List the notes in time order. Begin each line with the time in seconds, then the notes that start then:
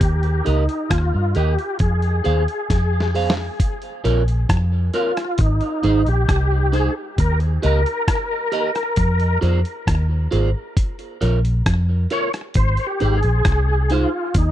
0.00 D#2 G4, kick, closed hi-hat
0.23 closed hi-hat
0.45 C#2 D#4 G4 A#4 D#5, closed hi-hat
0.69 closed hi-hat
0.90 D#2 F4, kick, cross-stick, closed hi-hat
1.15 G2
1.35 D#2 G4 A#4 D#5, closed hi-hat
1.59 closed hi-hat
1.79 F2 G#4, kick, closed hi-hat
2.02 closed hi-hat
2.24 D#2 G#4 C5 F5, closed hi-hat
2.48 closed hi-hat
2.70 F2, kick, snare, closed hi-hat
3.00 snare
3.15 G#4 C5 F5, open hi-hat
3.30 snare
3.60 kick, closed hi-hat
3.82 closed hi-hat
4.04 A#1 F4 A#4 C#5, closed hi-hat
4.28 closed hi-hat
4.49 F2, kick, cross-stick, closed hi-hat
4.94 F4 A#4 C#5, closed hi-hat
5.17 cross-stick, closed hi-hat
5.38 G#1 D#4, kick, closed hi-hat
5.61 closed hi-hat
5.83 G#1 D#4 G#4 C5, closed hi-hat
6.06 A#1 G4, closed hi-hat
6.29 C2, kick, cross-stick, closed hi-hat
6.72 D#4 G#4 C5, closed hi-hat
7.18 D#2 A#4, kick, closed hi-hat
7.40 closed hi-hat
7.62 C#2 G4 A#4 D#5, closed hi-hat
7.86 closed hi-hat
8.08 kick, cross-stick, closed hi-hat
8.52 G4 A#4 D#5, closed hi-hat
8.75 cross-stick, closed hi-hat
8.96 F2, kick, closed hi-hat
9.20 closed hi-hat
9.41 F2 F4 G#4 C5, closed hi-hat
9.65 closed hi-hat
9.87 D#2, kick, cross-stick, closed hi-hat
10.31 G#1 F4 G#4 C5, closed hi-hat
10.77 kick, closed hi-hat
10.99 closed hi-hat
11.21 A#1 F4 A#4 C#5, closed hi-hat
11.45 closed hi-hat
11.66 F2, kick, cross-stick, closed hi-hat
12.10 F4 A#4 C#5, closed hi-hat
12.34 cross-stick, closed hi-hat
12.54 G#1 C5, kick, closed hi-hat
12.77 closed hi-hat
12.87 G4
13.00 G#1 D#4 G#4 C5, closed hi-hat
13.18 G#4
13.23 A#1, closed hi-hat
13.45 C2, kick, cross-stick, closed hi-hat
13.90 D#4 F4 G#4 C5, closed hi-hat
14.34 D#2 D#4, kick, closed hi-hat